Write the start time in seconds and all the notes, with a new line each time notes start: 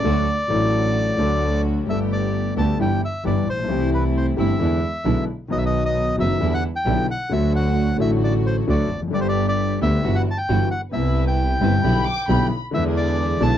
Already playing: D5
0.04 D2 D3 F#3 A3 D4 F#4 A4
0.48 A1 A2 F#3 A3 D4 F#4
0.52 A4
1.17 D2 D3 F#3 A3 D4 F#4 A4
1.86 G1 G2 G3 A3 B3 D4 G4 A4 E5
2.13 D5
2.56 D2 D3 G3 A3 B3 D4 G4 A4 A5
2.79 G1 G2 E3 G3 B3 D4 E4 G4 G5
3.05 E5
3.24 G1 G2 E3 G3 B3 D4 E4 G4 D5
3.47 A#1 C5
3.53 A1
3.58 A#1
3.64 B1 E3
3.69 C2 C3 A3 C4 E4 G4
3.94 B4
4.17 C5
4.36 G1 G2 E3 A3 C4 E4 G4 E5
4.59 E2 D3 E3 G#3 B3 D4 E4
5.04 B1 B2 D3 G#3 B3 D4 E4
5.48 B1 B2 D#3 F#3 B3 D#4 D#5
5.52 F#4
5.58 E5
5.66 D#5
5.85 D#5
6.17 F#1 F#2 D#3 F#3 B3 D#4 F#4 E5
6.40 E2 D3 E3 G3 B3 D4 E4
6.54 F#5
6.76 G5
6.85 B1 B2 D3 G3 B3 D4 E4
7.11 F#5
7.30 D2 D3 F#3 A3 D4 F#4 E5
7.56 F#5
7.98 A1 A2 D3 F#3 A3 D4 F#4 E5
8.24 D5
8.47 C5
8.67 D2 D3 F#3 A3 D4 F#4 D5
8.91 F1
8.96 E2
9.02 F2
9.08 F#2 D3
9.12 G1 G2 G3 B3 D4 G4 D5
9.21 C5
9.29 D5
9.49 D5
9.81 D2 D3 G3 B3 D4 G4 E5
10.03 G1 G2 E3 G3 B3 E4 F#4
10.15 F#5
10.31 A5
10.38 G5
10.48 G1 G2 E3 G3 B3 E4 F#4
10.71 F#5
10.91 C2 C3 G3 B3 E4 B4 E5
10.96 E4
11.28 G5
11.61 G1 G2 C3 G3 B3 C4 E4 B4
11.82 B1 B2 D3 G3 B3 E4 G4 B5
12.06 D6
12.28 B1 B2 D3 G3 B3 E4 G4 B5
12.71 E2 D3 E3 G#3 B3 D4 E4 G#4 E5
12.76 E4
12.97 D5
13.40 B1 B2 D3 G#3 B3 D4 E4 G#4 A5